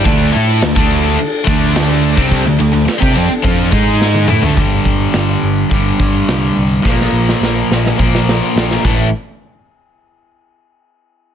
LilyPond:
<<
  \new Staff \with { instrumentName = "Analog synth pad" } { \time 4/4 \key g \dorian \tempo 4 = 106 <d' a' a''>1~ | <d' a' a''>2~ <d' a' a''>8 <dis' gis' gis''>4 r8 | r1 | r1 |
r1 | }
  \new Staff \with { instrumentName = "Distorted electric guitar" } { \time 4/4 \key g \dorian <d a d'>8 <a e' a'>8 <d a>16 <d a d'>8. r8 <d a d'>4~ <d a d'>16 <c g c'>16~ | <c g c'>16 <d a>16 <d a>16 <d a>16 r16 <c' g'>16 <f c'>16 r16 <f c' f'>8 <gis dis' gis'>4 <a e'>16 <d a>16 | r1 | r1 |
r1 | }
  \new Staff \with { instrumentName = "Overdriven electric guitar" } { \time 4/4 \key g \dorian <d a d'>8 <a e' a'>8 <d a>16 <d a d'>8. r8 <d a d'>4~ <d a d'>16 <c g c'>16~ | <c g c'>16 <d a>16 <d a>16 <d a>16 r16 <c' g'>16 <f c'>16 r16 <f c' f'>8 <gis dis' gis'>4 <a e'>16 <d a>16 | <g, d g>2 <g, d g>2 | <bes, f bes>2 <bes, f bes>4. <a, e a>8 |
r1 | }
  \new Staff \with { instrumentName = "Overdriven electric guitar" } { \time 4/4 \key g \dorian <d a d'>8 <a e' a'>8 <d a>16 <d a d'>8. r8 <d a d'>4~ <d a d'>16 <c g c'>16~ | <c g c'>16 <d a>16 <d a>16 <d a>16 r16 <c' g'>16 <f c'>16 r16 <f c' f'>8 <gis dis' gis'>4 <a e'>16 <d a>16 | <g, d g>2 <g, d g>2 | <bes, f bes>2 <bes, f bes>4. <a, e a>8 |
r1 | }
  \new Staff \with { instrumentName = "Picked electric bass" } { \clef bass \time 4/4 \key g \dorian d,8 a,8 d,16 d,8. r8 d,4~ d,16 c,16~ | c,16 d,16 d,16 d,16 r16 c16 f,16 r16 f,8 gis,4 a,16 d,16 | g,,8 g,,8 g,,8 g,,8 g,,8 g,,8 c,8 c,8 | bes,,8 bes,,8 bes,,8 bes,,8 bes,,4 bes,,8 a,,8 |
r1 | }
  \new DrumStaff \with { instrumentName = "Drums" } \drummode { \time 4/4 <bd cymr>8 cymr8 <cymr sn>16 bd16 cymr8 cymr8 <bd cymr>8 <cymr sn>8 cymr16 bd16 | <bd cymr>8 cymr8 <cymr sn>16 bd16 cymr8 <bd cymr>8 <bd cymr>8 sn16 tommh16 toml16 tomfh16 | <hho bd>8 <hho bd>8 <hho sn>8 hho8 <hho bd>8 <hho bd>8 <hho sn>8 hho8 | <bd sn>16 sn8 sn16 sn8 sn16 sn16 bd16 sn16 sn8 sn16 sn16 <cymc bd>8 |
r4 r4 r4 r4 | }
>>